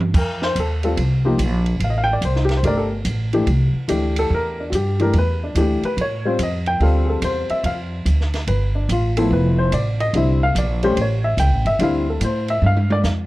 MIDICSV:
0, 0, Header, 1, 5, 480
1, 0, Start_track
1, 0, Tempo, 416378
1, 165, Time_signature, 4, 2, 24, 8
1, 15293, End_track
2, 0, Start_track
2, 0, Title_t, "Upright piano"
2, 0, Program_c, 0, 0
2, 206, Note_on_c, 0, 70, 63
2, 493, Note_off_c, 0, 70, 0
2, 499, Note_on_c, 0, 72, 91
2, 649, Note_off_c, 0, 72, 0
2, 688, Note_on_c, 0, 69, 74
2, 866, Note_off_c, 0, 69, 0
2, 965, Note_on_c, 0, 55, 66
2, 969, Note_on_c, 0, 60, 56
2, 973, Note_on_c, 0, 65, 62
2, 976, Note_on_c, 0, 69, 68
2, 1111, Note_off_c, 0, 55, 0
2, 1113, Note_off_c, 0, 60, 0
2, 1115, Note_off_c, 0, 65, 0
2, 1116, Note_off_c, 0, 69, 0
2, 1435, Note_on_c, 0, 53, 64
2, 1440, Note_on_c, 0, 58, 64
2, 1446, Note_on_c, 0, 63, 60
2, 1450, Note_on_c, 0, 67, 72
2, 1586, Note_off_c, 0, 53, 0
2, 1589, Note_off_c, 0, 58, 0
2, 1592, Note_off_c, 0, 63, 0
2, 1593, Note_off_c, 0, 67, 0
2, 2124, Note_on_c, 0, 77, 63
2, 2191, Note_on_c, 0, 75, 64
2, 2208, Note_off_c, 0, 77, 0
2, 2244, Note_off_c, 0, 75, 0
2, 2279, Note_on_c, 0, 77, 76
2, 2348, Note_on_c, 0, 79, 105
2, 2415, Note_off_c, 0, 77, 0
2, 2454, Note_off_c, 0, 79, 0
2, 2457, Note_on_c, 0, 74, 75
2, 2550, Note_off_c, 0, 74, 0
2, 2592, Note_on_c, 0, 72, 73
2, 2719, Note_on_c, 0, 63, 52
2, 2734, Note_off_c, 0, 72, 0
2, 2823, Note_on_c, 0, 67, 83
2, 2875, Note_off_c, 0, 63, 0
2, 2932, Note_off_c, 0, 67, 0
2, 2961, Note_on_c, 0, 72, 66
2, 3042, Note_off_c, 0, 72, 0
2, 3045, Note_on_c, 0, 57, 62
2, 3050, Note_on_c, 0, 67, 59
2, 3051, Note_on_c, 0, 62, 56
2, 3060, Note_on_c, 0, 70, 69
2, 3082, Note_on_c, 0, 74, 85
2, 3198, Note_on_c, 0, 69, 68
2, 3219, Note_off_c, 0, 74, 0
2, 3295, Note_off_c, 0, 69, 0
2, 3331, Note_off_c, 0, 57, 0
2, 3334, Note_off_c, 0, 62, 0
2, 3334, Note_off_c, 0, 67, 0
2, 3339, Note_off_c, 0, 70, 0
2, 3842, Note_on_c, 0, 52, 69
2, 3847, Note_on_c, 0, 57, 63
2, 3851, Note_on_c, 0, 62, 62
2, 3853, Note_on_c, 0, 67, 74
2, 3991, Note_off_c, 0, 52, 0
2, 3993, Note_off_c, 0, 57, 0
2, 3995, Note_off_c, 0, 62, 0
2, 3996, Note_off_c, 0, 67, 0
2, 4475, Note_on_c, 0, 52, 58
2, 4479, Note_on_c, 0, 57, 55
2, 4485, Note_on_c, 0, 62, 53
2, 4488, Note_on_c, 0, 67, 72
2, 4827, Note_on_c, 0, 69, 87
2, 4975, Note_off_c, 0, 69, 0
2, 5006, Note_on_c, 0, 70, 80
2, 5215, Note_off_c, 0, 52, 0
2, 5217, Note_off_c, 0, 57, 0
2, 5220, Note_off_c, 0, 62, 0
2, 5222, Note_off_c, 0, 67, 0
2, 5295, Note_off_c, 0, 70, 0
2, 5304, Note_on_c, 0, 62, 58
2, 5416, Note_on_c, 0, 66, 50
2, 5453, Note_off_c, 0, 66, 0
2, 5454, Note_off_c, 0, 62, 0
2, 5473, Note_on_c, 0, 67, 72
2, 5758, Note_off_c, 0, 67, 0
2, 5760, Note_on_c, 0, 52, 67
2, 5768, Note_on_c, 0, 57, 58
2, 5769, Note_on_c, 0, 62, 53
2, 5775, Note_on_c, 0, 67, 67
2, 5788, Note_on_c, 0, 70, 75
2, 5910, Note_off_c, 0, 52, 0
2, 5914, Note_off_c, 0, 57, 0
2, 5915, Note_off_c, 0, 62, 0
2, 5918, Note_off_c, 0, 67, 0
2, 5936, Note_off_c, 0, 70, 0
2, 5975, Note_on_c, 0, 71, 82
2, 6260, Note_off_c, 0, 71, 0
2, 6266, Note_on_c, 0, 62, 58
2, 6407, Note_off_c, 0, 62, 0
2, 6416, Note_on_c, 0, 52, 64
2, 6422, Note_on_c, 0, 57, 54
2, 6424, Note_on_c, 0, 62, 61
2, 6426, Note_on_c, 0, 67, 69
2, 6447, Note_off_c, 0, 67, 0
2, 6464, Note_on_c, 0, 67, 71
2, 6698, Note_off_c, 0, 52, 0
2, 6701, Note_off_c, 0, 57, 0
2, 6702, Note_off_c, 0, 62, 0
2, 6745, Note_off_c, 0, 67, 0
2, 6746, Note_on_c, 0, 71, 82
2, 6895, Note_off_c, 0, 71, 0
2, 6931, Note_on_c, 0, 73, 81
2, 7208, Note_on_c, 0, 55, 66
2, 7214, Note_on_c, 0, 60, 59
2, 7218, Note_off_c, 0, 73, 0
2, 7218, Note_on_c, 0, 65, 55
2, 7218, Note_on_c, 0, 72, 70
2, 7355, Note_off_c, 0, 55, 0
2, 7358, Note_off_c, 0, 60, 0
2, 7359, Note_off_c, 0, 65, 0
2, 7359, Note_off_c, 0, 72, 0
2, 7412, Note_on_c, 0, 75, 81
2, 7695, Note_on_c, 0, 79, 108
2, 7699, Note_off_c, 0, 75, 0
2, 7850, Note_off_c, 0, 79, 0
2, 7856, Note_on_c, 0, 55, 66
2, 7859, Note_on_c, 0, 60, 62
2, 7860, Note_on_c, 0, 65, 59
2, 7866, Note_on_c, 0, 77, 77
2, 7868, Note_on_c, 0, 69, 68
2, 8126, Note_on_c, 0, 68, 47
2, 8149, Note_off_c, 0, 68, 0
2, 8160, Note_off_c, 0, 69, 0
2, 8165, Note_off_c, 0, 77, 0
2, 8177, Note_on_c, 0, 69, 65
2, 8331, Note_off_c, 0, 69, 0
2, 8353, Note_on_c, 0, 72, 80
2, 8649, Note_off_c, 0, 72, 0
2, 8652, Note_on_c, 0, 76, 85
2, 8808, Note_off_c, 0, 76, 0
2, 8827, Note_on_c, 0, 77, 83
2, 9012, Note_off_c, 0, 77, 0
2, 9195, Note_off_c, 0, 55, 0
2, 9196, Note_off_c, 0, 60, 0
2, 9197, Note_off_c, 0, 65, 0
2, 9774, Note_on_c, 0, 71, 64
2, 10079, Note_off_c, 0, 71, 0
2, 10088, Note_on_c, 0, 62, 58
2, 10245, Note_off_c, 0, 62, 0
2, 10279, Note_on_c, 0, 65, 68
2, 10571, Note_off_c, 0, 65, 0
2, 10572, Note_on_c, 0, 69, 72
2, 10573, Note_on_c, 0, 53, 64
2, 10579, Note_on_c, 0, 57, 62
2, 10584, Note_on_c, 0, 59, 61
2, 10589, Note_on_c, 0, 64, 74
2, 10727, Note_off_c, 0, 69, 0
2, 10754, Note_on_c, 0, 71, 76
2, 11048, Note_off_c, 0, 71, 0
2, 11049, Note_on_c, 0, 72, 87
2, 11180, Note_off_c, 0, 53, 0
2, 11182, Note_off_c, 0, 57, 0
2, 11185, Note_off_c, 0, 59, 0
2, 11187, Note_off_c, 0, 64, 0
2, 11206, Note_off_c, 0, 72, 0
2, 11225, Note_on_c, 0, 74, 77
2, 11523, Note_off_c, 0, 74, 0
2, 11534, Note_on_c, 0, 75, 97
2, 11688, Note_off_c, 0, 75, 0
2, 11697, Note_on_c, 0, 50, 62
2, 11702, Note_on_c, 0, 55, 56
2, 11703, Note_on_c, 0, 60, 59
2, 11709, Note_on_c, 0, 64, 65
2, 11725, Note_on_c, 0, 76, 72
2, 11977, Note_off_c, 0, 50, 0
2, 11979, Note_off_c, 0, 55, 0
2, 11980, Note_off_c, 0, 60, 0
2, 11983, Note_off_c, 0, 64, 0
2, 12013, Note_off_c, 0, 76, 0
2, 12025, Note_on_c, 0, 77, 98
2, 12173, Note_off_c, 0, 77, 0
2, 12200, Note_on_c, 0, 74, 69
2, 12489, Note_on_c, 0, 55, 74
2, 12490, Note_off_c, 0, 74, 0
2, 12492, Note_on_c, 0, 57, 63
2, 12497, Note_on_c, 0, 61, 63
2, 12498, Note_on_c, 0, 72, 90
2, 12499, Note_on_c, 0, 67, 83
2, 12633, Note_off_c, 0, 55, 0
2, 12634, Note_off_c, 0, 57, 0
2, 12637, Note_off_c, 0, 61, 0
2, 12638, Note_off_c, 0, 67, 0
2, 12649, Note_off_c, 0, 72, 0
2, 12698, Note_on_c, 0, 73, 75
2, 12963, Note_on_c, 0, 76, 84
2, 12979, Note_off_c, 0, 73, 0
2, 13121, Note_off_c, 0, 76, 0
2, 13139, Note_on_c, 0, 79, 91
2, 13439, Note_off_c, 0, 79, 0
2, 13451, Note_on_c, 0, 76, 92
2, 13603, Note_on_c, 0, 50, 72
2, 13605, Note_off_c, 0, 76, 0
2, 13608, Note_on_c, 0, 55, 59
2, 13611, Note_on_c, 0, 60, 64
2, 13619, Note_on_c, 0, 64, 74
2, 13639, Note_on_c, 0, 77, 76
2, 13888, Note_off_c, 0, 50, 0
2, 13891, Note_off_c, 0, 55, 0
2, 13892, Note_off_c, 0, 60, 0
2, 13896, Note_off_c, 0, 64, 0
2, 13929, Note_off_c, 0, 77, 0
2, 13944, Note_on_c, 0, 69, 59
2, 14091, Note_off_c, 0, 69, 0
2, 14116, Note_on_c, 0, 72, 75
2, 14407, Note_off_c, 0, 72, 0
2, 14414, Note_on_c, 0, 76, 91
2, 14565, Note_off_c, 0, 76, 0
2, 14599, Note_on_c, 0, 77, 94
2, 14888, Note_off_c, 0, 77, 0
2, 14899, Note_on_c, 0, 74, 96
2, 14991, Note_off_c, 0, 74, 0
2, 15293, End_track
3, 0, Start_track
3, 0, Title_t, "Upright bass"
3, 0, Program_c, 1, 32
3, 0, Note_on_c, 1, 43, 89
3, 145, Note_off_c, 1, 43, 0
3, 161, Note_on_c, 1, 41, 81
3, 629, Note_off_c, 1, 41, 0
3, 638, Note_on_c, 1, 39, 83
3, 1108, Note_off_c, 1, 39, 0
3, 1117, Note_on_c, 1, 36, 86
3, 1587, Note_off_c, 1, 36, 0
3, 1592, Note_on_c, 1, 34, 88
3, 2065, Note_off_c, 1, 34, 0
3, 2070, Note_on_c, 1, 33, 76
3, 2544, Note_off_c, 1, 33, 0
3, 2552, Note_on_c, 1, 36, 82
3, 3025, Note_off_c, 1, 36, 0
3, 3033, Note_on_c, 1, 31, 82
3, 3506, Note_off_c, 1, 31, 0
3, 3512, Note_on_c, 1, 33, 85
3, 3986, Note_off_c, 1, 33, 0
3, 3991, Note_on_c, 1, 36, 78
3, 4293, Note_off_c, 1, 36, 0
3, 4472, Note_on_c, 1, 38, 82
3, 4946, Note_off_c, 1, 38, 0
3, 4956, Note_on_c, 1, 40, 84
3, 5428, Note_off_c, 1, 40, 0
3, 5442, Note_on_c, 1, 43, 88
3, 5911, Note_off_c, 1, 43, 0
3, 5917, Note_on_c, 1, 40, 79
3, 6389, Note_off_c, 1, 40, 0
3, 6397, Note_on_c, 1, 38, 83
3, 6697, Note_off_c, 1, 38, 0
3, 6882, Note_on_c, 1, 45, 86
3, 7352, Note_off_c, 1, 45, 0
3, 7363, Note_on_c, 1, 41, 85
3, 7832, Note_off_c, 1, 41, 0
3, 7841, Note_on_c, 1, 38, 80
3, 8311, Note_off_c, 1, 38, 0
3, 8320, Note_on_c, 1, 40, 85
3, 8619, Note_off_c, 1, 40, 0
3, 8804, Note_on_c, 1, 41, 82
3, 9272, Note_off_c, 1, 41, 0
3, 9285, Note_on_c, 1, 38, 88
3, 9753, Note_off_c, 1, 38, 0
3, 9766, Note_on_c, 1, 31, 81
3, 10233, Note_off_c, 1, 31, 0
3, 10245, Note_on_c, 1, 33, 85
3, 10712, Note_off_c, 1, 33, 0
3, 10726, Note_on_c, 1, 29, 87
3, 11193, Note_off_c, 1, 29, 0
3, 11205, Note_on_c, 1, 33, 92
3, 11672, Note_off_c, 1, 33, 0
3, 11682, Note_on_c, 1, 36, 80
3, 12149, Note_off_c, 1, 36, 0
3, 12161, Note_on_c, 1, 34, 90
3, 12629, Note_off_c, 1, 34, 0
3, 12639, Note_on_c, 1, 33, 86
3, 13107, Note_off_c, 1, 33, 0
3, 13112, Note_on_c, 1, 37, 92
3, 13274, Note_off_c, 1, 37, 0
3, 13274, Note_on_c, 1, 33, 54
3, 13425, Note_off_c, 1, 33, 0
3, 13432, Note_on_c, 1, 31, 64
3, 13586, Note_off_c, 1, 31, 0
3, 13592, Note_on_c, 1, 38, 89
3, 14063, Note_off_c, 1, 38, 0
3, 14069, Note_on_c, 1, 45, 92
3, 14541, Note_off_c, 1, 45, 0
3, 14547, Note_on_c, 1, 43, 88
3, 15019, Note_off_c, 1, 43, 0
3, 15029, Note_on_c, 1, 41, 87
3, 15293, Note_off_c, 1, 41, 0
3, 15293, End_track
4, 0, Start_track
4, 0, Title_t, "Muted upright bass strokes"
4, 4303, Note_on_c, 9, 29, 36
4, 4418, Note_off_c, 9, 29, 0
4, 6711, Note_on_c, 9, 29, 39
4, 6826, Note_off_c, 9, 29, 0
4, 8644, Note_on_c, 9, 29, 39
4, 8760, Note_off_c, 9, 29, 0
4, 15293, End_track
5, 0, Start_track
5, 0, Title_t, "Drums"
5, 5, Note_on_c, 9, 47, 67
5, 120, Note_off_c, 9, 47, 0
5, 164, Note_on_c, 9, 36, 61
5, 165, Note_on_c, 9, 49, 68
5, 280, Note_off_c, 9, 36, 0
5, 280, Note_off_c, 9, 49, 0
5, 485, Note_on_c, 9, 38, 56
5, 600, Note_off_c, 9, 38, 0
5, 642, Note_on_c, 9, 44, 59
5, 642, Note_on_c, 9, 51, 66
5, 643, Note_on_c, 9, 36, 19
5, 758, Note_off_c, 9, 44, 0
5, 758, Note_off_c, 9, 51, 0
5, 759, Note_off_c, 9, 36, 0
5, 955, Note_on_c, 9, 51, 42
5, 1070, Note_off_c, 9, 51, 0
5, 1120, Note_on_c, 9, 36, 21
5, 1120, Note_on_c, 9, 51, 58
5, 1235, Note_off_c, 9, 51, 0
5, 1236, Note_off_c, 9, 36, 0
5, 1599, Note_on_c, 9, 36, 19
5, 1600, Note_on_c, 9, 44, 46
5, 1600, Note_on_c, 9, 51, 72
5, 1714, Note_off_c, 9, 36, 0
5, 1715, Note_off_c, 9, 44, 0
5, 1715, Note_off_c, 9, 51, 0
5, 1912, Note_on_c, 9, 51, 40
5, 2027, Note_off_c, 9, 51, 0
5, 2077, Note_on_c, 9, 51, 61
5, 2078, Note_on_c, 9, 36, 20
5, 2192, Note_off_c, 9, 51, 0
5, 2193, Note_off_c, 9, 36, 0
5, 2556, Note_on_c, 9, 44, 49
5, 2556, Note_on_c, 9, 51, 59
5, 2558, Note_on_c, 9, 36, 23
5, 2671, Note_off_c, 9, 44, 0
5, 2671, Note_off_c, 9, 51, 0
5, 2673, Note_off_c, 9, 36, 0
5, 2717, Note_on_c, 9, 38, 26
5, 2832, Note_off_c, 9, 38, 0
5, 2868, Note_on_c, 9, 51, 43
5, 2880, Note_on_c, 9, 38, 41
5, 2983, Note_off_c, 9, 51, 0
5, 2996, Note_off_c, 9, 38, 0
5, 3038, Note_on_c, 9, 51, 58
5, 3039, Note_on_c, 9, 36, 24
5, 3153, Note_off_c, 9, 51, 0
5, 3154, Note_off_c, 9, 36, 0
5, 3512, Note_on_c, 9, 44, 52
5, 3512, Note_on_c, 9, 51, 67
5, 3516, Note_on_c, 9, 36, 20
5, 3627, Note_off_c, 9, 44, 0
5, 3627, Note_off_c, 9, 51, 0
5, 3632, Note_off_c, 9, 36, 0
5, 3835, Note_on_c, 9, 51, 41
5, 3950, Note_off_c, 9, 51, 0
5, 3998, Note_on_c, 9, 36, 26
5, 3999, Note_on_c, 9, 51, 55
5, 4113, Note_off_c, 9, 36, 0
5, 4114, Note_off_c, 9, 51, 0
5, 4477, Note_on_c, 9, 44, 58
5, 4477, Note_on_c, 9, 51, 70
5, 4480, Note_on_c, 9, 36, 16
5, 4593, Note_off_c, 9, 44, 0
5, 4593, Note_off_c, 9, 51, 0
5, 4595, Note_off_c, 9, 36, 0
5, 4795, Note_on_c, 9, 51, 68
5, 4910, Note_off_c, 9, 51, 0
5, 4961, Note_on_c, 9, 36, 23
5, 5076, Note_off_c, 9, 36, 0
5, 5444, Note_on_c, 9, 36, 26
5, 5446, Note_on_c, 9, 44, 48
5, 5446, Note_on_c, 9, 51, 61
5, 5559, Note_off_c, 9, 36, 0
5, 5562, Note_off_c, 9, 44, 0
5, 5562, Note_off_c, 9, 51, 0
5, 5756, Note_on_c, 9, 51, 41
5, 5872, Note_off_c, 9, 51, 0
5, 5917, Note_on_c, 9, 51, 55
5, 5922, Note_on_c, 9, 36, 18
5, 6032, Note_off_c, 9, 51, 0
5, 6038, Note_off_c, 9, 36, 0
5, 6402, Note_on_c, 9, 44, 53
5, 6402, Note_on_c, 9, 51, 73
5, 6404, Note_on_c, 9, 36, 19
5, 6517, Note_off_c, 9, 44, 0
5, 6517, Note_off_c, 9, 51, 0
5, 6520, Note_off_c, 9, 36, 0
5, 6724, Note_on_c, 9, 51, 40
5, 6840, Note_off_c, 9, 51, 0
5, 6887, Note_on_c, 9, 36, 18
5, 6889, Note_on_c, 9, 51, 63
5, 7002, Note_off_c, 9, 36, 0
5, 7004, Note_off_c, 9, 51, 0
5, 7363, Note_on_c, 9, 44, 48
5, 7363, Note_on_c, 9, 51, 70
5, 7367, Note_on_c, 9, 36, 21
5, 7478, Note_off_c, 9, 44, 0
5, 7478, Note_off_c, 9, 51, 0
5, 7482, Note_off_c, 9, 36, 0
5, 7680, Note_on_c, 9, 51, 43
5, 7795, Note_off_c, 9, 51, 0
5, 7845, Note_on_c, 9, 36, 21
5, 7845, Note_on_c, 9, 51, 53
5, 7960, Note_off_c, 9, 36, 0
5, 7960, Note_off_c, 9, 51, 0
5, 8322, Note_on_c, 9, 44, 48
5, 8322, Note_on_c, 9, 51, 71
5, 8325, Note_on_c, 9, 36, 23
5, 8437, Note_off_c, 9, 44, 0
5, 8437, Note_off_c, 9, 51, 0
5, 8440, Note_off_c, 9, 36, 0
5, 8640, Note_on_c, 9, 51, 41
5, 8755, Note_off_c, 9, 51, 0
5, 8807, Note_on_c, 9, 36, 24
5, 8807, Note_on_c, 9, 51, 61
5, 8923, Note_off_c, 9, 36, 0
5, 8923, Note_off_c, 9, 51, 0
5, 9288, Note_on_c, 9, 36, 19
5, 9289, Note_on_c, 9, 44, 46
5, 9289, Note_on_c, 9, 51, 60
5, 9403, Note_off_c, 9, 36, 0
5, 9404, Note_off_c, 9, 44, 0
5, 9404, Note_off_c, 9, 51, 0
5, 9460, Note_on_c, 9, 38, 29
5, 9575, Note_off_c, 9, 38, 0
5, 9607, Note_on_c, 9, 51, 42
5, 9614, Note_on_c, 9, 38, 39
5, 9722, Note_off_c, 9, 51, 0
5, 9729, Note_off_c, 9, 38, 0
5, 9767, Note_on_c, 9, 51, 61
5, 9769, Note_on_c, 9, 36, 20
5, 9882, Note_off_c, 9, 51, 0
5, 9885, Note_off_c, 9, 36, 0
5, 10250, Note_on_c, 9, 36, 24
5, 10250, Note_on_c, 9, 44, 51
5, 10250, Note_on_c, 9, 51, 68
5, 10365, Note_off_c, 9, 36, 0
5, 10365, Note_off_c, 9, 44, 0
5, 10365, Note_off_c, 9, 51, 0
5, 10567, Note_on_c, 9, 51, 65
5, 10682, Note_off_c, 9, 51, 0
5, 10729, Note_on_c, 9, 36, 26
5, 10845, Note_off_c, 9, 36, 0
5, 11206, Note_on_c, 9, 44, 57
5, 11206, Note_on_c, 9, 51, 65
5, 11208, Note_on_c, 9, 36, 22
5, 11321, Note_off_c, 9, 44, 0
5, 11321, Note_off_c, 9, 51, 0
5, 11323, Note_off_c, 9, 36, 0
5, 11531, Note_on_c, 9, 51, 43
5, 11646, Note_off_c, 9, 51, 0
5, 11685, Note_on_c, 9, 51, 58
5, 11686, Note_on_c, 9, 36, 19
5, 11801, Note_off_c, 9, 36, 0
5, 11801, Note_off_c, 9, 51, 0
5, 12164, Note_on_c, 9, 36, 21
5, 12168, Note_on_c, 9, 44, 64
5, 12168, Note_on_c, 9, 51, 71
5, 12279, Note_off_c, 9, 36, 0
5, 12283, Note_off_c, 9, 44, 0
5, 12283, Note_off_c, 9, 51, 0
5, 12479, Note_on_c, 9, 51, 46
5, 12595, Note_off_c, 9, 51, 0
5, 12642, Note_on_c, 9, 36, 24
5, 12644, Note_on_c, 9, 51, 67
5, 12757, Note_off_c, 9, 36, 0
5, 12759, Note_off_c, 9, 51, 0
5, 13118, Note_on_c, 9, 44, 53
5, 13118, Note_on_c, 9, 51, 64
5, 13120, Note_on_c, 9, 36, 21
5, 13234, Note_off_c, 9, 44, 0
5, 13234, Note_off_c, 9, 51, 0
5, 13235, Note_off_c, 9, 36, 0
5, 13437, Note_on_c, 9, 51, 43
5, 13552, Note_off_c, 9, 51, 0
5, 13595, Note_on_c, 9, 51, 58
5, 13598, Note_on_c, 9, 36, 19
5, 13711, Note_off_c, 9, 51, 0
5, 13713, Note_off_c, 9, 36, 0
5, 14072, Note_on_c, 9, 44, 51
5, 14072, Note_on_c, 9, 51, 67
5, 14076, Note_on_c, 9, 36, 19
5, 14188, Note_off_c, 9, 44, 0
5, 14188, Note_off_c, 9, 51, 0
5, 14192, Note_off_c, 9, 36, 0
5, 14391, Note_on_c, 9, 51, 44
5, 14506, Note_off_c, 9, 51, 0
5, 14561, Note_on_c, 9, 48, 46
5, 14676, Note_off_c, 9, 48, 0
5, 14719, Note_on_c, 9, 48, 62
5, 14834, Note_off_c, 9, 48, 0
5, 14876, Note_on_c, 9, 48, 84
5, 14992, Note_off_c, 9, 48, 0
5, 15030, Note_on_c, 9, 44, 52
5, 15033, Note_on_c, 9, 38, 52
5, 15146, Note_off_c, 9, 44, 0
5, 15148, Note_off_c, 9, 38, 0
5, 15293, End_track
0, 0, End_of_file